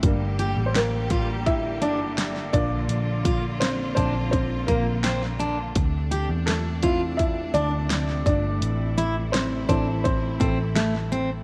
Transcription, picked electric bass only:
\new Staff \with { instrumentName = "Picked electric bass" } { \clef bass \time 4/4 \key d \minor \tempo 4 = 84 g,,8. a,,4.~ a,,16 g,,4 bes,,8 | bes,,4. bes,,4 bes,,4. | d,8. e,4.~ e,16 d,4 g,,8 | a,,4. a,,4 a,,4. | }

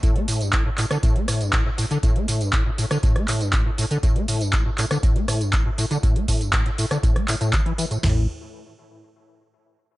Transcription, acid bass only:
\new Staff \with { instrumentName = "Acid bass" } { \clef bass \time 4/4 \key c \lydian \tempo 4 = 120 a,16 a16 a,16 g,16 a,16 a,16 a,16 d16 a,16 a16 a,16 g,16 a,16 a,16 a,16 d16 | a,16 a16 a,16 g,16 a,16 a,16 a,16 d16 a,16 a16 a,16 g,16 a,16 a,16 a,16 d16 | a,16 a16 a,16 g,16 a,16 a,16 a,16 d16 a,16 a16 a,16 g,16 a,16 a,16 a,16 d16 | a,16 a16 a,16 g,16 a,16 a,16 a,16 d16 a,16 a16 a,16 a,16 e16 e16 e16 a,16 |
a,8 r2. r8 | }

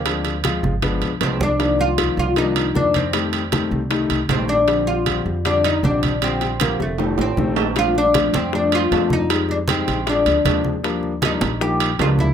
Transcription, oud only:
\new Staff \with { instrumentName = "Oud" } { \time 4/4 \key bes \major \tempo 4 = 156 bes4 r2 c'8 d'8~ | d'8 f'4 f'8 ees'4 d'8 c'8~ | c'4 r2 c'8 d'8~ | d'8 f'4 r8 d'8 ees'8 d'4 |
c'4 bes8 a4 c'4. | f'8 d'4 c'8 d'8 f'4 ees'8~ | ees'8 d'8 c'4 d'4. r8 | r4 ees'4 g'4 f'8 e'8 | }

